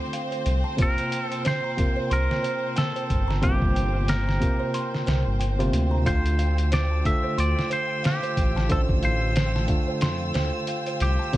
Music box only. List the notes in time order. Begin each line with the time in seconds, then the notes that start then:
0.13 F5
0.31 C5
0.64 A5
0.78 C5
1.11 G5
1.45 C5
1.64 A#5
1.96 C5
2.10 C6
2.43 C5
2.76 G5
2.96 C5
3.28 A#5
3.42 C5
3.75 G5
4.08 C5
4.27 A#5
4.60 C5
4.74 C6
5.06 C5
5.40 G5
5.59 C5
5.91 A#5
6.06 C5
6.39 F5
6.72 C5
6.91 A5
7.24 C5
7.38 C6
7.70 C5
8.03 F5
8.23 C5
8.56 A5
8.71 C5
9.04 F5
9.36 C5
9.55 A5
9.88 C5
10.02 C6
10.34 C5
10.68 F5
10.87 C5
11.19 A5
11.33 C5